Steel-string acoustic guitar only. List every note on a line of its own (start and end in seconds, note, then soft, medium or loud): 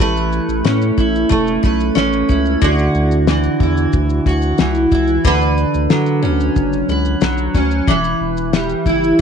0.00 2.18 E3 medium
0.00 1.29 A3 medium
0.00 0.97 E4 medium
0.00 1.61 B4 medium
0.65 1.94 C#4 medium
0.98 2.28 E4 medium
1.29 3.27 A3 medium
1.63 2.62 B4 medium
1.95 2.68 C#4 medium
2.29 3.60 E4 medium
2.62 4.62 D3 medium
2.62 4.26 F#4 medium
3.28 4.58 E3 medium
3.60 4.91 E4 medium
4.26 5.25 F#4 medium
4.59 5.31 E3 medium
4.92 5.31 E4 medium
5.25 7.58 D3 medium
5.25 6.89 B4 medium
5.90 7.20 F#3 medium
6.22 7.54 C#4 medium
6.89 7.89 B4 medium
7.21 7.94 F#3 medium
7.55 7.94 C#4 medium
7.88 9.18 E3 medium
7.88 9.21 B4 medium
8.53 9.21 G3 medium
8.86 9.21 E4 medium